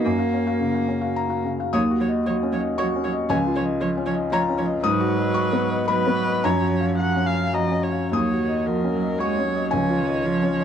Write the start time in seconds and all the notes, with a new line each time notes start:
0.04 F#2 A#3
0.18 F#4 F5
0.34 C#4
0.46 F#4 F5
0.60 C#3
0.75 F#4 F5
0.88 C#4
1.01 F#4 F5
1.16 A#5
1.29 F#4 F5
1.45 C#3
1.59 F#4 F5
1.73 D#2 F#3 C#5 D#6
1.91 F#4
1.99 F#3 C#5
2.08 D#5
2.26 F#3 F#4 C#5
2.43 C#4
2.52 F#3 C#5
2.60 D#5
2.78 F#3 F#4 C#5 C#6
2.96 C#4
3.04 F#3 C#5
3.13 D#5
3.29 C#2 F3 C#5 G#5
3.47 F4
3.56 F3 C#5
3.64 D#5
3.81 F3 F4 C#5
3.97 C#4
4.06 F3 C#5
4.14 D#5
4.30 F3 F4 C#5 A#5
4.49 C#4
4.58 F3 C#5
4.65 D#5
4.83 G#2 F#3 B4 D#6
5.00 F#4
5.17 D#5
5.34 F#4 C#6
5.53 B3
5.71 D#5
5.88 F#3 F#4 B4 B5
6.07 B3
6.25 D#5
6.44 F#2 F3 C#5 A#5
6.62 F#4
6.81 F5
6.98 F#4 F#5
7.16 C#4
7.26 F5
7.34 F5
7.53 F3 F#4 D#5 A#5
7.71 C#4
7.83 C#5
7.92 F5
8.11 D#2 F#3 C#5 D#6
8.31 F#4
8.40 D#3
8.48 D#5
8.66 F3 F#4 A#4
8.84 C#4
8.93 F#3
9.03 D#5
9.18 G#3 F#4 C#5 C#6
9.38 C#4
9.47 F#3
9.55 D#5
9.71 C#2 F3 C#5 G#5
9.90 F4
9.98 D#3
10.07 D#5
10.24 F3 F4
10.43 C#4
10.52 F3
10.60 D#5